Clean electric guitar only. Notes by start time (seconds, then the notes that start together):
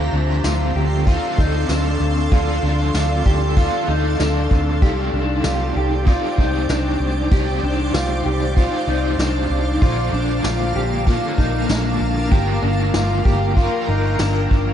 Already playing: F4
0.13 D4
0.44 F4
0.76 G4
1.07 F4
1.38 D#4
1.69 D4
2.32 F4
2.63 D4
2.95 F4
3.26 G4
3.57 F4
3.88 D#4
4.19 D4
4.82 G4
5.14 D4
5.45 F4
5.77 G4
6.07 F4
6.39 D#4
6.70 D4
7.32 G4
7.63 D4
7.94 F4
8.26 G4
8.57 F4
8.88 D#4
9.19 D4
9.82 F4
10.13 D4
10.45 F4
10.76 G4
11.07 F4
11.38 D#4
11.68 D4
12.31 G4
12.62 D4
12.94 F4
13.25 G4
13.56 F4
13.88 D#4
14.20 D4